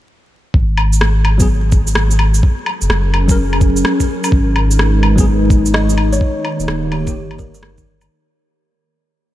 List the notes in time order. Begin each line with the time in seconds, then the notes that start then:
0.54 G#1, kick
0.78 low woodblock
0.93 shaker
1.01 cross-stick
1.25 low woodblock
1.38 F#3 B3 G#4, kick, shaker
1.72 kick, shaker
1.87 shaker
1.95 cross-stick
2.11 shaker
2.19 low woodblock
2.34 shaker
2.43 F#3, kick
2.52 G#4
2.60 C#4 A#4
2.66 low woodblock
2.82 F#1, shaker
2.90 F#1, cross-stick
3.14 low woodblock
3.28 F#3 C#4 A#4, kick, shaker
3.53 low woodblock
3.61 kick, shaker
3.77 shaker
3.85 cross-stick
4.00 kick, shaker
4.24 low woodblock, shaker
4.32 G#1 G#3, kick
4.39 D#4
4.56 low woodblock
4.71 B4, shaker
4.79 cross-stick
5.03 low woodblock
5.16 F#3 B3, kick, shaker
5.20 G#4
5.50 kick, shaker
5.66 shaker
5.74 D#5, cross-stick
5.90 shaker
5.98 low woodblock
6.13 C#5, shaker
6.21 D#3, kick
6.26 A#3
6.45 low woodblock
6.53 G4
6.60 D#1, shaker
6.68 D#1, cross-stick
6.92 G4, low woodblock
7.05 D#3 A#3 G4, kick, shaker
7.09 G4
7.15 G1
7.31 low woodblock
7.38 A#4, kick, shaker
7.54 A#4, shaker
7.63 cross-stick
7.78 kick, shaker
8.01 low woodblock, shaker